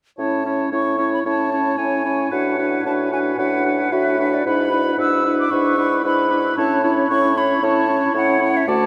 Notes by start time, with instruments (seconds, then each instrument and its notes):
0.19 bassoon A2, french horn C#4, clarinet E4, oboe C#5, flute A5
0.45 french horn C#4, clarinet E4, oboe C#5
0.72 bassoon A2, french horn C#4, clarinet E4, oboe C#5, flute C#6
0.99 french horn C#4, clarinet E4, oboe C#5
1.14 flute B5
1.25 bassoon A2, french horn C#4, clarinet E4, oboe C#5, flute A5
1.52 french horn C#4, clarinet E4, oboe C#5
1.78 bassoon A2, french horn C#4, clarinet E4, oboe C#5, flute G#5
2.05 french horn C#4, clarinet E4, oboe C#5
2.32 bassoon A2, french horn D4, clarinet F#4, oboe B4, flute F#5
2.58 french horn D4, clarinet F#4, oboe B4
2.85 bassoon A2, french horn D4, clarinet F#4, oboe B4, flute A5
3.11 french horn D4, clarinet F#4, oboe B4, flute G#5
3.38 bassoon A2, french horn D4, clarinet F#4, oboe B4, flute F#5
3.64 french horn D4, clarinet F#4, oboe B4
3.92 bassoon A2, french horn D4, clarinet F#4, oboe B4, flute E5
4.18 french horn D4, clarinet F#4, oboe B4
4.34 flute D5
4.45 bassoon G#2, french horn D4, clarinet E4, oboe B4, flute B5
4.72 french horn D4, clarinet E4, oboe B4
4.98 bassoon G#2, french horn D4, clarinet E4, oboe B4, flute E6
5.24 french horn D4, clarinet E4, oboe B4
5.39 flute D6
5.51 bassoon G#2, french horn D4, clarinet E4, oboe B4, flute C#6
5.77 french horn D4, clarinet E4, oboe B4
6.04 bassoon G#2, french horn D4, clarinet E4, oboe B4, flute B5
6.31 french horn D4, clarinet E4, oboe B4
6.57 bassoon A2, french horn C#4, clarinet E4, oboe C#5, flute A5
6.84 french horn C#4, clarinet E4, oboe C#5
7.09 bassoon A2, french horn C#4, clarinet E4, oboe C#5, flute C#6
7.36 french horn C#4, clarinet E4, oboe C#5, flute B5
7.62 bassoon A2, french horn C#4, clarinet E4, oboe C#5, flute A5
7.89 french horn C#4, clarinet E4, oboe C#5
8.14 bassoon A2, french horn C#4, clarinet E4, oboe C#5, flute F#5
8.41 french horn C#4, clarinet E4, oboe C#5
8.57 flute E5
8.67 bassoon D2, french horn A3, clarinet F#4, oboe D5, flute A5